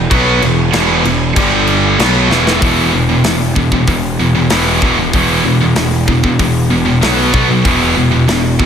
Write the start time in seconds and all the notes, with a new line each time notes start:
0.10 B1 B2 F#3 B3, kick, crash
0.42 E1 E2 B2, crash
0.73 E1 E2 B2 E3, snare, crash
1.05 E1 E2 B2, crash
1.36 G1 G2 D3 G3, kick, crash
1.67 crash
1.99 B1 B2 F#3 B3, snare, crash
2.30 E1 E2 B2 E3, snare
2.47 snare
2.62 E1 E2 B2 E3, kick, open hi-hat
2.93 E1 E2 B2
3.09 E2 B2
3.24 E1 E2 B2, snare, open hi-hat
3.56 E1 E2 B2, kick
3.72 E2 B2, kick
3.87 E1 E2 B2, kick, open hi-hat
4.20 E1 E2 B2
4.35 E2 B2
4.50 E1 E2 B2 E3, snare, open hi-hat
4.82 E1 E2 B2 E3, kick
4.98 E2 B2
5.13 E1 E2 B2 E3, kick, open hi-hat
5.44 E1 E2 B2
5.60 E2 B2
5.76 E1 E2 B2, snare, open hi-hat
6.08 E1 E2 B2, kick
6.24 E2 B2, kick
6.39 E1 E2 B2, kick, open hi-hat
6.70 E1 E2 B2
6.85 E2 B2
7.01 B1 B2 F#3 B3, snare, open hi-hat
7.33 B1 B2 F#3 B3, kick
7.49 B2 F#3
7.64 E1 E2 B2 E3, kick, open hi-hat
7.97 E1 E2 B2
8.12 E2 B2
8.27 E1 E2 B2, snare, open hi-hat
8.59 E1 E2 B2, kick